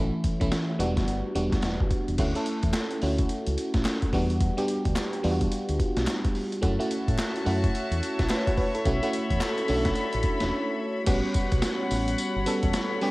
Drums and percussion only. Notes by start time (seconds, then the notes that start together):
0.24 kick, closed hi-hat
0.41 kick, closed hi-hat
0.52 snare, closed hi-hat
0.80 closed hi-hat
0.97 kick, snare, closed hi-hat
1.08 closed hi-hat
1.36 closed hi-hat
1.52 kick, snare, closed hi-hat
1.62 snare, closed hi-hat
1.80 kick
1.91 kick, closed hi-hat
2.08 closed hi-hat
2.18 kick, closed hi-hat, crash
2.35 closed hi-hat
2.46 closed hi-hat
2.63 kick, closed hi-hat
2.73 snare, clap, closed hi-hat
2.91 closed hi-hat
3.02 open hi-hat
3.18 kick, closed hi-hat
3.29 closed hi-hat
3.46 closed hi-hat
3.58 closed hi-hat
3.74 kick, snare, closed hi-hat
3.85 snare, clap, closed hi-hat
4.02 kick, closed hi-hat
4.13 kick, open hi-hat
4.30 closed hi-hat
4.41 kick, closed hi-hat
4.58 closed hi-hat
4.68 closed hi-hat
4.85 kick, closed hi-hat
4.96 snare, clap, closed hi-hat
5.13 closed hi-hat
5.24 open hi-hat
5.41 kick, closed hi-hat
5.52 closed hi-hat
5.69 closed hi-hat
5.80 kick, closed hi-hat
5.97 snare, closed hi-hat
6.07 snare, clap, closed hi-hat
6.25 kick, closed hi-hat
6.35 open hi-hat
6.52 closed hi-hat
6.63 kick, closed hi-hat
6.81 closed hi-hat
6.91 closed hi-hat
7.08 kick, closed hi-hat
7.18 snare, clap, closed hi-hat
7.36 closed hi-hat
7.46 open hi-hat
7.64 kick, closed hi-hat
7.75 closed hi-hat
7.92 closed hi-hat
8.03 closed hi-hat
8.19 kick, snare, closed hi-hat
8.29 snare, clap, closed hi-hat
8.47 kick, closed hi-hat
8.57 kick, open hi-hat
8.75 closed hi-hat
8.85 kick, closed hi-hat
9.03 closed hi-hat
9.13 closed hi-hat
9.30 kick, closed hi-hat
9.40 snare, clap, closed hi-hat
9.58 closed hi-hat
9.68 open hi-hat
9.85 kick, snare, closed hi-hat
9.96 closed hi-hat
10.13 closed hi-hat
10.23 kick, closed hi-hat
10.40 snare, closed hi-hat
11.06 kick, closed hi-hat, crash, tambourine
11.34 kick, closed hi-hat, tambourine
11.52 kick, closed hi-hat
11.62 snare, closed hi-hat, tambourine
11.91 open hi-hat, tambourine
12.08 closed hi-hat
12.18 closed hi-hat, tambourine
12.46 closed hi-hat, tambourine
12.63 kick, closed hi-hat
12.73 snare, closed hi-hat, tambourine
13.01 open hi-hat